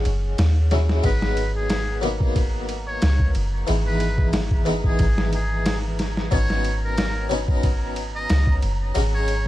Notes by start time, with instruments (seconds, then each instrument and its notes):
Already playing: harpsichord F#3 G#3 C#4 F#4
0.05 808-style bass F#1, ride
0.38 808-style bass D#2, snare, ride
0.71 harpsichord F#3 G#3 C#4 E4, snare, ride
0.89 snare
1.03 808-style bass G#1, harpsichord F#3 G#3 B3 D#4, muted trumpet B4, synth texture A#5, kick, ride
1.22 snare
1.37 ride
1.56 muted trumpet G#4
1.70 snare, ride
2.01 harpsichord F#3 A#3 B3, ride
2.05 harpsichord D#4
2.21 kick
2.36 kick, ride
2.69 ride
2.88 muted trumpet C#5
3.02 808-style bass C#2, snare, ride
3.19 kick
3.35 808-style bass F#1, ride
3.67 808-style bass G#1, harpsichord E3 G#3 B3 D#4, ride
3.87 muted trumpet B4
4.00 ride
4.18 kick
4.33 snare, ride
4.51 kick
4.65 harpsichord E3 G#3 B3 D#4, ride
4.84 muted trumpet G#4, kick
4.99 808-style bass G#1, kick, ride
5.18 snare
5.33 muted trumpet G#4, ride
5.66 snare, ride
5.99 snare, ride
6.17 snare
6.31 808-style bass G#1, harpsichord F#3 B3 C#4 D#4, muted trumpet C#5, kick, ride
6.50 snare
6.64 ride
6.84 muted trumpet A#4
6.98 snare, ride
7.29 harpsichord F#3 B3 C#4 D#4, ride
7.48 kick
7.63 kick, ride
7.96 ride
8.15 muted trumpet D#5
8.30 808-style bass C#2, snare, ride
8.47 kick
8.62 808-style bass F#1, ride
8.95 808-style bass G#1, harpsichord F#3 G#3 C#4 F#4, ride
9.15 muted trumpet C#5
9.28 ride